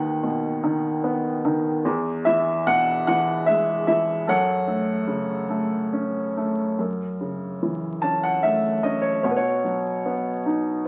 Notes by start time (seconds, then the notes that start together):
Already playing: D#2 D#3 B4 F#5
0.23 B2
0.64 D#3
1.04 B3
1.45 D#3
1.85 E2
2.25 E3 E5
2.67 B2 F#5
3.07 E3 F#5
3.46 G#3 E5
3.87 E3 E5
4.27 F#2 A4 C#5 F#5
4.67 A3
5.07 C#3
5.50 A3
5.93 C#4
6.37 A3
6.79 F#2
7.21 C#3
7.62 E3
8.02 C#4 A5
8.23 F#5
8.43 A3 E5
8.83 C#4 D#5
9.02 C#5
9.23 B2 F#4 C#5
9.31 B4
9.37 F#4 C#5
9.64 F#3
10.05 B3
10.46 D#4